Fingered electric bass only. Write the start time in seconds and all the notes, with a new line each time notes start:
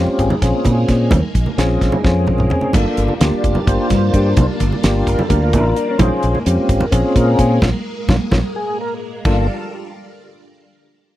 0.08 muted fingered electric bass stroke
0.19 G#1
0.42 A#1
0.65 A#2
0.89 A#2
1.12 D#2
1.35 A#1
1.58 A#1
1.81 A#1
2.05 F2
2.29 A#1
2.74 G1
2.98 G1
3.21 D2
3.33 muted fingered electric bass stroke
3.44 F1
3.67 G1
3.91 G2
4.14 G2
4.37 C2
4.61 G1
4.84 G1
5.07 G1
5.30 D2
5.53 A1
5.99 A#1
6.24 A#1
6.47 F2
6.58 muted fingered electric bass stroke
6.69 G#1
6.92 A#1
7.16 A#2
7.39 A#2
7.62 A#1
8.09 A#1
8.32 A#1
9.25 G1